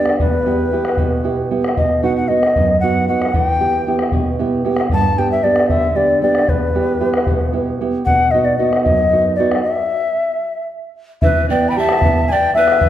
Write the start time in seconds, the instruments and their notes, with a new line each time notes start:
Already playing: nylon-string guitar B3 D4 G4, quena D5
0.06 bombo rim
0.20 nylon-string guitar E2, quena B4, bombo low
0.45 nylon-string guitar B3 E4 G4, bombo rim
0.72 nylon-string guitar B3 E4 G4
0.85 bombo rim
0.97 nylon-string guitar B2, bombo low
1.12 bombo rim
1.24 nylon-string guitar B3 E4 G4
1.51 nylon-string guitar B3 E4 G4
1.64 bombo rim
1.77 nylon-string guitar B2, quena D#5, bombo low
2.03 nylon-string guitar B3 D#4 F#4, quena F#5, bombo rim
2.16 quena F#5
2.28 nylon-string guitar B3 D#4 F#4, quena D#5
2.43 bombo rim
2.56 nylon-string guitar F#2, bombo low
2.80 nylon-string guitar B3 D#4 F#4, quena F#5
3.08 nylon-string guitar B3 D#4 F#4, quena F#5
3.22 bombo rim
3.34 nylon-string guitar E3, quena G5, bombo rim, bombo low
3.60 nylon-string guitar B3 E4 G4
3.73 bombo rim
3.87 nylon-string guitar B3 E4 G4
3.99 bombo rim
4.12 nylon-string guitar B2, bombo low
4.39 nylon-string guitar B3 E4 G4
4.65 nylon-string guitar B3 E4 G4, bombo rim
4.77 bombo rim
4.90 nylon-string guitar G2, quena A5, bombo low
5.18 nylon-string guitar B3 D4 G4, quena G5
5.32 quena E5
5.44 nylon-string guitar B3 D4 G4, quena D5
5.56 bombo rim
5.69 nylon-string guitar D3, quena E5, bombo low
5.83 bombo rim
5.95 nylon-string guitar B3 D4 G4, quena D5
6.22 nylon-string guitar B3 D4 G4, quena D5
6.35 bombo rim
6.48 nylon-string guitar E2, quena B4, bombo low
6.75 nylon-string guitar B3 E4 G4, bombo rim
7.00 nylon-string guitar B3 E4 G4
7.14 bombo rim
7.27 nylon-string guitar B2, bombo low
7.41 bombo rim
7.52 nylon-string guitar B3 E4 G4
7.81 nylon-string guitar B3 E4 G4
8.05 nylon-string guitar B2, quena F#5, bombo low
8.31 nylon-string guitar B3 D#4 F#4, quena D#5, bombo rim
8.45 quena D5
8.57 nylon-string guitar B3 D#4 F#4, quena D#5
8.73 bombo rim
8.83 nylon-string guitar F#2, quena D#5, bombo low
8.99 bombo rim
9.11 nylon-string guitar B3 D#4 F#4
9.36 nylon-string guitar B3 D#4, quena D5
9.40 nylon-string guitar F#4
9.52 bombo rim
9.62 quena E5
11.22 nylon-string guitar E3, pan flute B4, quena E5, bombo low
11.49 nylon-string guitar B3, pan flute D5, quena G5
11.61 bombo rim
11.69 pan flute G5, quena B5
11.77 nylon-string guitar G4, pan flute E5, quena A5
11.89 bombo rim
12.02 nylon-string guitar B3, bombo low
12.28 nylon-string guitar E4, pan flute D5, quena G#5
12.32 quena G5
12.54 nylon-string guitar B3, pan flute B4, quena E5, bombo rim
12.68 bombo rim
12.81 nylon-string guitar E3, bombo low